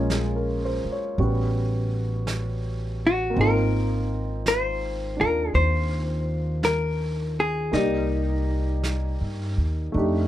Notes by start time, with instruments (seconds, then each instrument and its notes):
Already playing: upright bass A#1, grand piano G#3 A#3 C#4 F4, hollow-body jazz guitar C#4
0.10 grand piano G#4, brush sweep, snare, hi-hat pedal
0.36 grand piano A#4
0.65 grand piano C5
0.84 muted upright bass stroke
0.92 grand piano C#5
1.18 upright bass A1, grand piano G3 B3 C#4 F#4, brush sweep
2.27 brush sweep, snare, hi-hat pedal
3.07 hollow-body jazz guitar F#4
3.30 grand piano A#3 C4
3.36 upright bass G#1, grand piano D#4, brush sweep
3.41 grand piano F4, hollow-body jazz guitar A#4
4.46 hollow-body jazz guitar C5, brush sweep, snare, hi-hat pedal
5.16 grand piano D4 F4
5.21 upright bass D#2, hollow-body jazz guitar A#4
5.54 upright bass D#2, hollow-body jazz guitar C5, brush sweep
6.63 hollow-body jazz guitar A#4, brush sweep, snare, hi-hat pedal
7.40 hollow-body jazz guitar G#4
7.72 upright bass C2, grand piano A#3 D#4 D5, hollow-body jazz guitar D#4, brush sweep, snare
7.76 grand piano G4
8.83 brush sweep, snare, hi-hat pedal
9.21 upright bass G2
9.57 upright bass D#2
9.92 upright bass F2, grand piano A3 D4 D#4, brush sweep
9.98 grand piano G4